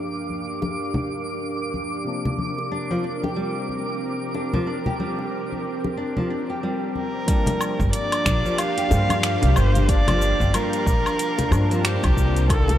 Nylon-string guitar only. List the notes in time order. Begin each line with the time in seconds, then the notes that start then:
2.72 D4
2.91 F3
3.04 D4
3.23 G4
3.36 G3
4.35 D4
4.54 F3
4.67 D4
4.86 G4
5.00 G3
5.97 D4
6.17 F3
6.30 D4
6.50 G4
6.63 G3
7.28 G3
8.26 D4
8.45 F3
8.59 D4
8.78 G4
8.91 G3
9.89 D4
10.08 F3
10.22 D4
10.41 G4
10.54 G3
11.52 D4
11.71 F3
11.84 D4
12.03 G4
12.17 G3